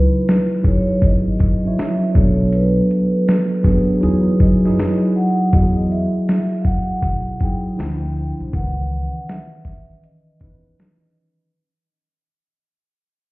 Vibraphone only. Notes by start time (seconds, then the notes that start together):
Already playing: B4
0.67 C#5
1.05 D#5
1.66 E5
2.11 D5
2.17 C#5
2.55 B4
4.41 D#5
5.16 F#5
5.53 D#5
5.90 E5
6.61 F5
6.65 F#5
7.41 G5
8.55 F#5
9.28 E5
10.04 D#5